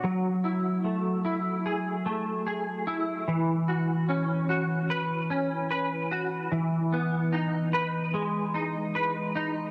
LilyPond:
\new Staff \with { instrumentName = "Clean electric guitar" } { \time 4/4 \key e \major \tempo 4 = 74 fis8 e'8 a8 e'8 gis'8 a8 gis'8 e'8 | e8 fis'8 cis'8 fis'8 b'8 cis'8 b'8 fis'8 | e8 b8 dis'8 b'8 gis8 dis'8 b'8 dis'8 | }